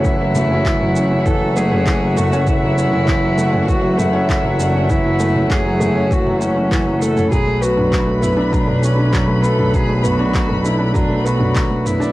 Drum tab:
SH |x-x-x-x-x-x-x-xx|x-x-x-x-x-x-x-x-|x-x-x-x-x-x-x-xx|x-x-x-x-x-x-x-x-|
CP |----x-------x---|----x-------x---|----x-------x---|----x-------x---|
T2 |--o--o--o--o--o-|-o--o--o--o--o--|o--o--o--o--o--o|o--o--o--o--o--o|
BD |o---o---o---o---|o---o---o---o---|o---o---o---o---|o---o---o---o---|

SH |x-x-x-x-x-x-x-xx|
CP |----x-------x---|
T2 |--o--o--o--o--o-|
BD |o---o---o---o---|